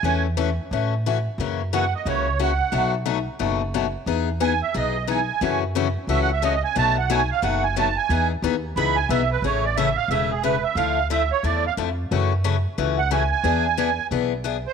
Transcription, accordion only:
X:1
M:4/4
L:1/8
Q:"Swing" 1/4=179
K:E
V:1 name="Accordion"
g z6 z | z2 f d c2 f2- | f z6 z | z2 g e d2 g2- |
g z3 (3e f e d g | a f g =f ^f g a g- | g z3 b g e B | [K:A] c d e =f e G B e |
=f2 e c d f z2 | z4 z f g g- | g4 z3 =c |]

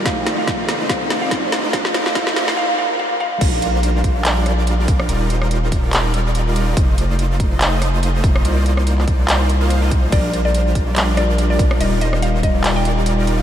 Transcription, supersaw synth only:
X:1
M:4/4
L:1/16
Q:"Swing 16ths" 1/4=143
K:Bb
V:1 name="Supersaw synth"
[A,EFe]2 [A,EFcd]4- [A,EFcd] [A,EFce] [A,E]2 [A,EFcd]4- [A,EFcd] [A,EFce] | [A,EFc]2 [A,EFcd]2 [A,EFce]2 [A,EFcd]2 z8 | [G,DFBd]2 [G,DFBc]4- [G,DFBc] [G,DFBd]3 [G,DFBd]4 B2 | [G,EFBd]2 [G,EFBc]4- [G,EFBc] [G,EFBd]3 [G,EFBd]4 [G,EFBd]2 |
[A,EF]2 [A,EFcd]4- [A,EFcd] [A,EFce]3 [A,EFce]4 [A,EFce]2 | [B,EFcd]2 [B,EFcd]4- [B,EFcd] [B,EFcd]3 z [B,EFcf]2 [B,EFce]3 | [G,DFBd]2 [G,DFBc]4- [G,DFBc] [G,DFBd]3 [G,DFBd]4 [DB]2 | [G,EFBd]2 [G,EFBc]4- [G,EFBc] [G,EFBd]3 [G,EFBd]4 [G,EFBd]2 |]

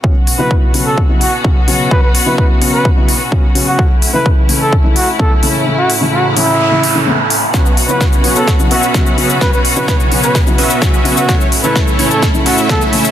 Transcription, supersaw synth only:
X:1
M:4/4
L:1/16
Q:1/4=128
K:Amix
V:1 name="Supersaw synth"
z16 | z16 | z16 | z16 |
[B,CFBc]2 z [B,CFBc]4 [B,CFBc]2 z [B,CFBe]3 [B,CFBe]3 | [B,CFBc]2 z [B,CFBc]4 [B,CFBc]2 z [B,CFBe]3 [B,CFBe]3 | [A,CEAc]2 z [A,CEAc]4 [A,CEAc]2 z [A,CEAe]3 [A,CEAe]3 |]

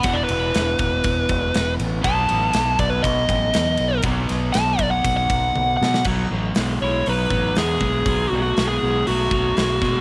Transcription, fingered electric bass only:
X:1
M:4/4
L:1/8
Q:1/4=120
K:Bmix
V:1 name="Fingered electric bass" clef=bass
E,,, E,,, E,,, E,,, E,,, E,,, E,,, A,,, | B,,, A,,, B,,, B,,, B,,, A,,, E,, B,,, | B,,, B,,, B,,, B,,, B,,, B,,, B,,, B,, | B,,, A,,, B,,, B,,, B,,, A,,, E,, B,,, |
B,,, B,,, B,,, B,,, B,,, B,,, B,,, B,, |]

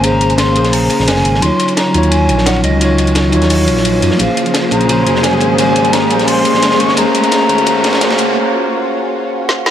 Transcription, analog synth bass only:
X:1
M:4/4
L:1/16
Q:1/4=173
K:Ebdor
V:1 name="Analog synth bass" clef=bass
A,,,6 B,,,4 z B,,, F,,,2 A,,,2 | E,, z4 z E,,4 B,,,4 D,,2- | D,,6 E,,4 B,,,4 G,, z | B,,, z4 z B,,,4 F,,,4 A,,,2- |
A,,,6 B,,,4 z B,,, F,,,2 A,,,2 | E,, z4 z E,,4 B,,,4 D,,2 | z16 |]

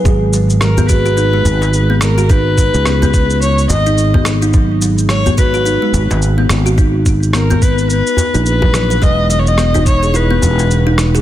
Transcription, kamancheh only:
X:1
M:4/4
L:1/16
Q:"Swing 16ths" 1/4=107
K:G#m
V:1 name="Kamancheh"
z4 A2 B8 A2 | B8 c2 d4 z2 | z4 c2 B6 z4 | z4 A2 B2 B4 B4 |
d2 d/2 c/2 d3 c2 B6 z2 |]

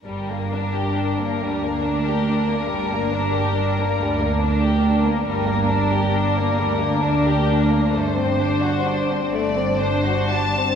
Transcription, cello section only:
X:1
M:6/8
L:1/8
Q:3/8=45
K:Gm
V:1 name="Cello section" clef=bass
G,,3 D,,3 | G,,3 D,,3 | G,,3 D,,3 | G,,3 G,,3 |]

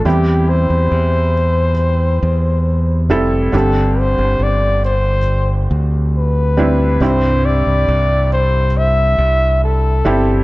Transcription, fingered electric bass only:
X:1
M:4/4
L:1/16
Q:1/4=69
K:C
V:1 name="Fingered electric bass" clef=bass
E,,3 E,, E,,6 E,,4 F,,,2 | G,,,3 G,,, G,,,6 D,,6 | C,,3 C,, C,,6 C,,4 G,,,2 |]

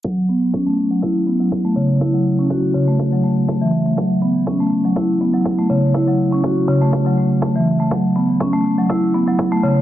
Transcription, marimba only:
X:1
M:4/4
L:1/16
Q:"Swing 16ths" 1/4=122
K:F#m
V:1 name="Marimba"
F, z B, z C A, z F, E z B, F, z A, C, z | E F, z C F z C, A, z F, A, z A, E, z A, | F, z B, z C A, z F, E z B, F, z A, C, z | E F, z C F z C, A, z F, A, z A, E, z A, |
F, z B, z C A, z F, E z B, F, z A, C, z |]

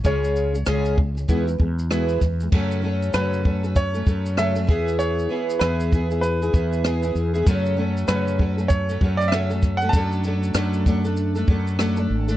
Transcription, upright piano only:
X:1
M:4/4
L:1/16
Q:"Swing 16ths" 1/4=97
K:F#m
V:1 name="Upright piano"
c6 z8 z2 | z4 B4 c4 e4 | c4 B4 B6 z2 | z4 B4 c3 d e3 f |
a12 z4 |]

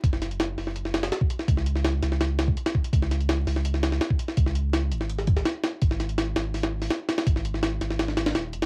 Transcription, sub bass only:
X:1
M:4/4
L:1/8
Q:1/4=166
K:C#m
V:1 name="Sub bass" clef=bass
F,,,3 F,,,3 z2 | C,,3 C,,3 z2 | C,,3 C,,3 z2 | C,,3 G,,,3 z2 |
G,,,3 G,,,3 z2 | G,,,3 G,,,3 D,,, F,,, |]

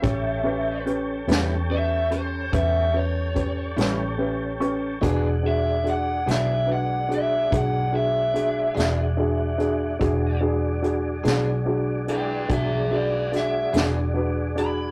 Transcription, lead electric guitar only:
X:1
M:12/8
L:1/8
Q:3/8=48
K:Edor
V:1 name="Lead electric guitar"
e2 z2 e =c e ^c4 z | z e f e f e f e4- e- | e z4 [Bg] [^Ge] [Bd] e z2 b |]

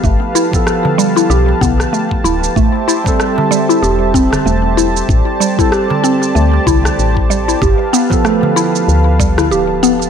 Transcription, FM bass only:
X:1
M:4/4
L:1/8
Q:"Swing 16ths" 1/4=95
K:Am
V:1 name="FM bass" clef=bass
G,,, z3 B,,, B,,, z D,,, | A,,, z3 E,,,2 E,,,2 | A,,, z3 D,, C,, A,,,2 | G,,, z3 D,,2 D,,,2 |]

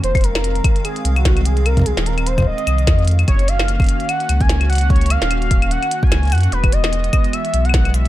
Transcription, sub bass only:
X:1
M:4/4
L:1/16
Q:"Swing 16ths" 1/4=148
K:Gblyd
V:1 name="Sub bass" clef=bass
F,,,6 z4 C,,6- | C,,3 E,,,6 z C,,2 F,,4 | G,,,6 z4 D,,6- | D,,3 E,,,6 z3 D,,2 G,,2 |
=E,,,6 z4 =B,,,6 |]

